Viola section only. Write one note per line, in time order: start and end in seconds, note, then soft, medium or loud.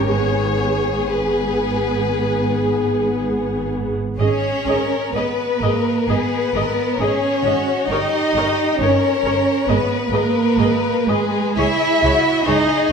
0.09 1.10 B3 soft
0.09 1.10 G#4 soft
1.11 3.95 B3 soft
1.11 3.94 G#4 soft
4.20 4.28 G#4 soft
4.20 4.28 D#5 soft
4.68 4.76 G#4 soft
4.68 4.76 D#5 soft
5.15 5.24 G#4 soft
5.15 5.23 D#5 soft
5.62 5.70 G#4 soft
5.62 5.70 D#5 soft
6.09 6.17 G#4 soft
6.09 6.17 D#5 soft
6.55 6.63 G#4 soft
6.55 6.63 D#5 soft
7.00 7.08 G#4 soft
7.00 7.08 D#5 soft
7.45 7.53 G#4 soft
7.45 7.53 D#5 soft
7.91 7.99 A#4 soft
7.91 7.99 C#5 soft
8.37 8.45 A#4 soft
8.37 8.45 C#5 soft
8.81 8.89 A#4 soft
8.81 8.89 C#5 soft
9.25 9.33 A#4 soft
9.25 9.33 C#5 soft
9.68 9.76 G#4 soft
9.68 9.76 D#5 soft
10.12 10.20 G#4 soft
10.12 10.21 D#5 soft
10.58 10.66 G#4 soft
10.58 10.66 D#5 soft
11.08 11.17 G#4 soft
11.08 11.16 D#5 soft
11.58 11.66 G#4 soft
11.58 11.66 C#5 soft
12.03 12.11 G#4 soft
12.03 12.12 C#5 soft
12.46 12.55 G#4 soft
12.46 12.54 C#5 soft